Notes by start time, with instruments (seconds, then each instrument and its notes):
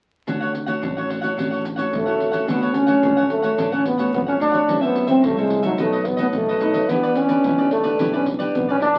0.27 fretless electric bass D2, nylon-string guitar D3 A3 C#4 F#4, cavaquinho D4 A4 C#5 F#5, pandeiro, maracas, surdo
0.41 cavaquinho A4 C#5 F#5, pandeiro, maracas
0.53 muted cavaquinho stroke, pandeiro, maracas
0.66 nylon-string guitar A3 C#4 F#4, cavaquinho A4 C#5 F#5, pandeiro, maracas
0.82 fretless electric bass A1, nylon-string guitar A2, cavaquinho D4 A4 C#5 F#5, pandeiro, maracas, surdo
0.96 nylon-string guitar A3 C#4 F#4, cavaquinho A4 C#5 F#5, pandeiro, maracas
1.09 cavaquinho D4 A4 C#5 F#5, pandeiro
1.21 nylon-string guitar A3 C#4 F#4, cavaquinho A4 C#5 F#5, pandeiro, maracas
1.37 fretless electric bass A1, nylon-string guitar D3 A3 C#4 F#4, cavaquinho D4 A4 C#5 F#5, pandeiro, maracas, surdo
1.51 cavaquinho A4 C#5 F#5, pandeiro, maracas
1.64 muted cavaquinho stroke, pandeiro, maracas
1.76 nylon-string guitar A3 C#4 F#4, cavaquinho A4 C#5 F#5, pandeiro, maracas
1.93 nylon-string guitar A2, fretless electric bass D3, trombone A3, pandeiro, maracas, surdo
2.06 nylon-string guitar A3 C#4 F#4, cavaquinho A4 C#5 F#5, pandeiro, maracas
2.20 pandeiro
2.31 nylon-string guitar A3 C#4 F#4, cavaquinho A4 C#5 F#5, pandeiro, maracas
2.47 fretless electric bass D2, nylon-string guitar D3, trombone B3, cavaquinho D4 A4 C#5 F#5, pandeiro, maracas, surdo
2.62 cavaquinho A4 C#5 F#5, pandeiro, maracas
2.74 trombone C#4, pandeiro, maracas
2.87 nylon-string guitar F#3 A3 C#4, cavaquinho A4 C#5 F#5, pandeiro, maracas
3.03 fretless electric bass D2, nylon-string guitar A2, cavaquinho D4 A4 C#5 F#5, pandeiro, maracas, surdo
3.17 nylon-string guitar F#3 A3 C#4, cavaquinho A4 C#5 F#5, pandeiro, maracas
3.30 trombone A3, pandeiro, maracas
3.42 nylon-string guitar F#3 A3 C#4, cavaquinho A4 C#5 F#5, pandeiro, maracas
3.58 fretless electric bass A1, nylon-string guitar D3 F#3 A3 C#4, cavaquinho D4 A4 C#5 F#5, pandeiro, maracas, surdo
3.72 trombone C#4, cavaquinho A4 C#5 F#5, pandeiro, maracas
3.85 trombone B3, muted cavaquinho stroke, pandeiro, maracas
3.98 nylon-string guitar F#3 A3 C#4, cavaquinho A4 C#5 F#5, pandeiro, maracas
4.13 fretless electric bass F2, nylon-string guitar A2, trombone B3, pandeiro, maracas, surdo
4.27 trombone C#4, cavaquinho A4 C#5 F#5, pandeiro, maracas
4.40 nylon-string guitar F#3 A3 C#4, cavaquinho D4 A4 C#5 F#5, trombone D4, pandeiro, maracas
4.52 cavaquinho A4 C#5 F#5, pandeiro, maracas
4.68 fretless electric bass F#2, nylon-string guitar F#2 E3 A3 C4, cavaquinho F#4 A4 C5 E5, pandeiro, maracas, surdo
4.81 trombone B3, cavaquinho A4 C5 E5, pandeiro, maracas
4.95 pandeiro, maracas
5.07 nylon-string guitar E3 A3 C4, trombone C4, cavaquinho A4 C5 E5, pandeiro, maracas
5.22 fretless electric bass C2, nylon-string guitar F#2, trombone A3, cavaquinho F#4 A4 C5 E5, pandeiro, maracas, surdo
5.36 nylon-string guitar E3 A3 C4, trombone G#3, cavaquinho A4 C5 E5, pandeiro, maracas
5.50 pandeiro
5.63 nylon-string guitar F#3 A3 D#4, trombone F#3, cavaquinho A4 C5 E5, pandeiro, maracas
5.78 fretless electric bass B1, nylon-string guitar B2, trombone A3, cavaquinho D#4 A4 B4 D#5, pandeiro, maracas, surdo
5.92 cavaquinho A4 B4 D#5, pandeiro, maracas
6.05 trombone B3, muted cavaquinho stroke, pandeiro, maracas, surdo
6.17 nylon-string guitar F#3 A3 D#4, cavaquinho A4 B4 D#5, pandeiro, maracas
6.21 trombone B3
6.33 fretless electric bass B1, nylon-string guitar F#2, trombone A3, pandeiro, maracas, surdo
6.49 cavaquinho A4 B4 D#5, pandeiro, maracas
6.60 nylon-string guitar F#3 A3 D#4, cavaquinho D#4 A4 B4 D#5, pandeiro, maracas
6.74 cavaquinho A4 B4 D#5, pandeiro, maracas
6.89 fretless electric bass E2, nylon-string guitar E3 B3 D4 G4, trombone B3, cavaquinho E4 G4 B4 D5, pandeiro, maracas, surdo
7.03 cavaquinho G4 B4 D5, pandeiro, maracas
7.15 trombone C#4, pandeiro, maracas
7.29 nylon-string guitar B3 D4 G4, cavaquinho G4 B4 D5, pandeiro, maracas
7.44 fretless electric bass E2, nylon-string guitar B2, cavaquinho E4 G4 B4 D5, pandeiro, maracas, surdo
7.58 nylon-string guitar B3 D4 G4, cavaquinho G4 B4 D5, pandeiro, maracas
7.71 trombone A3, pandeiro
7.84 nylon-string guitar B3 D4 G4, cavaquinho G4 B4 D5, pandeiro, maracas
7.99 fretless electric bass B1, nylon-string guitar E3 B3 D4 G4, cavaquinho E4 G4 B4 D5, pandeiro, maracas, surdo
8.13 trombone C#4, cavaquinho G4 B4 D5, pandeiro, maracas
8.26 muted cavaquinho stroke, pandeiro, surdo
8.39 nylon-string guitar B3 D4 G4, cavaquinho G4 B4 D5, pandeiro, maracas
8.55 fretless electric bass B1, nylon-string guitar B2, trombone B3, pandeiro, maracas, surdo
8.68 trombone C#4, cavaquinho G4 B4 D5, pandeiro, maracas
8.80 nylon-string guitar B3 D4 G4, trombone D4, cavaquinho E4 G4 B4 D5, pandeiro
8.94 cavaquinho B4 D5